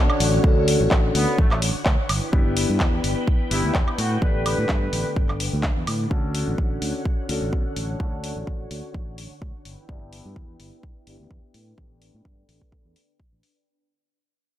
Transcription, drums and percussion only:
0.10 high woodblock medium
0.20 open hi-hat loud
0.44 kick loud
0.68 open hi-hat loud
0.91 kick loud
0.91 clap loud
1.15 open hi-hat loud
1.38 kick loud
1.51 clap soft
1.51 high woodblock medium
1.62 open hi-hat loud
1.86 kick loud
1.86 clap loud
2.09 open hi-hat loud
2.09 high woodblock medium
2.33 kick loud
2.57 open hi-hat loud
2.80 kick loud
2.80 clap loud
3.04 open hi-hat loud
3.28 kick loud
3.51 open hi-hat loud
3.75 kick loud
3.75 clap loud
3.88 high woodblock medium
3.98 open hi-hat loud
4.22 kick loud
4.46 open hi-hat loud
4.46 high woodblock medium
4.69 kick loud
4.69 clap loud
4.93 open hi-hat loud
5.16 kick loud
5.29 clap soft
5.29 high woodblock medium
5.40 open hi-hat loud
5.63 kick loud
5.63 clap loud
5.87 open hi-hat loud
5.87 high woodblock medium
6.11 kick loud
6.35 open hi-hat medium
6.58 kick loud
6.82 open hi-hat loud
7.05 kick loud
7.29 open hi-hat medium
7.53 kick loud
7.76 open hi-hat loud
8.00 kick loud
8.24 open hi-hat loud
8.47 kick loud
8.71 open hi-hat medium
8.94 kick loud
9.18 open hi-hat medium
9.42 kick loud
9.65 open hi-hat loud
9.89 kick loud
10.13 open hi-hat medium
10.36 kick loud
10.60 open hi-hat medium
10.83 kick loud
11.07 open hi-hat medium
11.31 kick loud
11.54 open hi-hat medium
11.78 kick loud
12.02 open hi-hat medium
12.25 kick loud
12.49 open hi-hat medium
12.62 kick soft
12.72 kick loud
12.96 open hi-hat medium
13.20 kick medium
13.43 open hi-hat medium

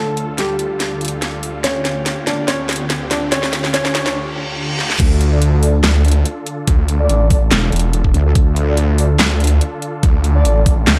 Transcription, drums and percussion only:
0.17 closed hi-hat medium
0.38 snare medium
0.38 closed hi-hat medium
0.59 closed hi-hat medium
0.80 snare medium
0.80 closed hi-hat medium
1.01 closed hi-hat soft
1.05 closed hi-hat medium
1.08 closed hi-hat medium
1.22 snare medium
1.22 closed hi-hat medium
1.43 open hi-hat medium
1.64 snare medium
1.64 closed hi-hat medium
1.85 snare medium
1.85 closed hi-hat medium
2.06 snare medium
2.06 closed hi-hat medium
2.27 snare medium
2.27 closed hi-hat medium
2.48 snare medium
2.48 closed hi-hat medium
2.69 snare medium
2.69 closed hi-hat soft
2.73 closed hi-hat medium
2.76 closed hi-hat medium
2.90 snare medium
2.90 closed hi-hat medium
3.11 snare medium
3.11 open hi-hat medium
3.32 snare medium
3.32 closed hi-hat medium
3.43 snare medium
3.53 snare loud
3.53 closed hi-hat medium
3.64 snare medium
3.74 snare medium
3.74 closed hi-hat medium
3.85 snare medium
3.95 snare loud
3.95 closed hi-hat soft
4.06 snare medium
4.79 snare medium
4.90 snare medium
5.00 kick loud
5.00 closed hi-hat medium
5.00 crash loud
5.21 closed hi-hat medium
5.42 closed hi-hat medium
5.63 open hi-hat medium
5.84 snare loud
5.84 clap medium
5.84 closed hi-hat medium
6.05 closed hi-hat soft
6.08 closed hi-hat medium
6.11 closed hi-hat medium
6.25 closed hi-hat medium
6.46 closed hi-hat medium
6.67 kick loud
6.67 closed hi-hat medium
6.88 closed hi-hat medium
7.09 closed hi-hat medium
7.30 kick loud
7.30 open hi-hat medium
7.51 snare loud
7.51 clap medium
7.51 closed hi-hat medium
7.72 closed hi-hat soft
7.76 closed hi-hat medium
7.79 closed hi-hat medium
7.93 closed hi-hat medium
8.04 kick medium
8.14 closed hi-hat medium
8.35 kick loud
8.35 closed hi-hat medium
8.56 closed hi-hat medium
8.77 closed hi-hat medium
8.98 open hi-hat medium
9.19 snare loud
9.19 clap loud
9.19 closed hi-hat medium
9.40 closed hi-hat soft
9.44 closed hi-hat medium
9.47 closed hi-hat medium
9.61 closed hi-hat medium
9.82 closed hi-hat medium
10.03 kick loud
10.03 closed hi-hat medium
10.24 closed hi-hat medium
10.45 closed hi-hat medium
10.66 kick loud
10.66 open hi-hat medium
10.87 snare loud
10.87 clap medium
10.87 closed hi-hat medium

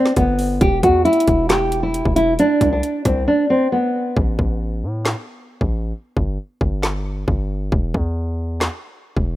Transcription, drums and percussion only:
0.06 snare medium
0.16 kick loud
0.16 closed hi-hat medium
0.39 open hi-hat medium
0.61 kick loud
0.61 closed hi-hat medium
0.83 kick medium
0.83 closed hi-hat medium
1.05 closed hi-hat soft
1.13 closed hi-hat medium
1.20 closed hi-hat medium
1.27 kick loud
1.27 closed hi-hat medium
1.50 snare loud
1.50 clap medium
1.50 closed hi-hat medium
1.72 closed hi-hat medium
1.94 closed hi-hat medium
2.05 kick medium
2.16 closed hi-hat medium
2.39 closed hi-hat medium
2.61 kick medium
2.61 closed hi-hat medium
2.83 closed hi-hat medium
3.05 kick loud
3.05 cross-stick medium
3.05 closed hi-hat medium
4.17 kick loud
4.39 kick medium
5.05 snare loud
5.05 clap medium
5.61 kick medium
6.17 kick medium
6.61 kick loud
6.83 snare loud
6.83 clap medium
7.28 kick loud
7.72 kick loud
7.94 kick medium
8.61 snare loud
8.61 clap medium
9.17 kick medium

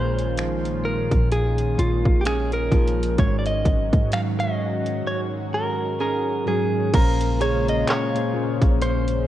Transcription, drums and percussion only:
0.19 closed hi-hat soft
0.37 finger snap loud
0.37 closed hi-hat medium
0.65 closed hi-hat soft
1.11 kick medium
1.11 closed hi-hat soft
1.31 closed hi-hat medium
1.58 closed hi-hat soft
1.79 closed hi-hat medium
2.05 kick medium
2.25 finger snap loud
2.25 closed hi-hat medium
2.52 closed hi-hat soft
2.71 kick medium
2.71 closed hi-hat soft
2.87 closed hi-hat medium
3.03 closed hi-hat medium
3.18 kick loud
3.18 closed hi-hat medium
3.46 closed hi-hat medium
3.65 kick medium
3.65 closed hi-hat medium
3.93 kick medium
3.93 closed hi-hat soft
4.12 finger snap loud
4.12 closed hi-hat medium
4.40 closed hi-hat soft
4.86 closed hi-hat soft
6.94 kick loud
6.94 closed hi-hat medium
6.94 crash loud
7.21 closed hi-hat medium
7.41 closed hi-hat medium
7.68 closed hi-hat soft
7.87 clap loud
7.87 closed hi-hat medium
8.16 closed hi-hat soft
8.62 kick loud
8.62 closed hi-hat soft
8.82 closed hi-hat medium
9.08 closed hi-hat soft

